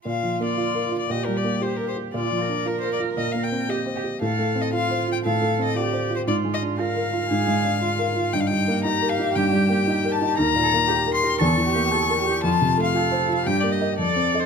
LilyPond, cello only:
\new Staff \with { instrumentName = "Cello" } { \time 4/4 \key bes \major \tempo 4 = 116 f'2 g'4 g'4 | f'8 bes'2~ bes'8 g'8 g'8 | a'4 f'4 a'4 g'4 | f'4 bes'4 aes'4 f'4 |
ees'4 g'2. | bes'8 a'8 g'8 bes'8 a'8 g'8 a'8 g'8 | f'4 a'4 g'4 a'4 | }